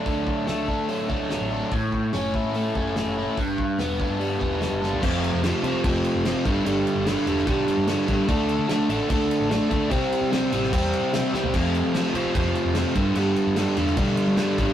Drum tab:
CC |----------------|----------------|----------------|x-x-x-x-x-x-x-x-|
HH |o---o---o---o---|o---o---o---o---|o---o---o---o---|----------------|
SD |----o-------o---|----o-------o---|----o-------o-o-|----o-------o---|
FT |----------------|----------------|---------------o|----------------|
BD |o-o---o---o-----|o-o---o---o-----|o-o---o---o-----|o-------o-----o-|

CC |x-x-x-x-x-x-x-x-|x-x-x-x-x-x-x-x-|x-x-x-x-x-x-x---|x-x-x-x-x-x-x-x-|
HH |----------------|----------------|----------------|----------------|
SD |----o--o----o---|----o-------o---|----o--o----o-o-|----o-------o---|
FT |----------------|----------------|---------------o|----------------|
BD |--------o-----o-|o-------o-----o-|o-------o-------|o-------o-----o-|

CC |x-x-x-x-x-x-x-x-|
HH |----------------|
SD |----o--o----o---|
FT |----------------|
BD |--------o-----o-|